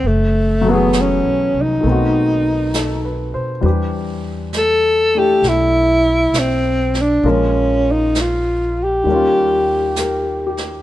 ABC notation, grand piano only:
X:1
M:4/4
L:1/8
Q:"Swing" 1/4=66
K:Ephr
V:1 name="Grand piano"
z6 (3A B c | z8 | z6 _B G |]
V:2 name="Grand piano"
z [E,^F,A,B,^G]3 [^D,A,B,C^F]4 | [E,G,DGB]3 [A,DEA]4- [A,DEA] | [F,_A,_B,_D_B]4 [_E,G,B,DF]4 |]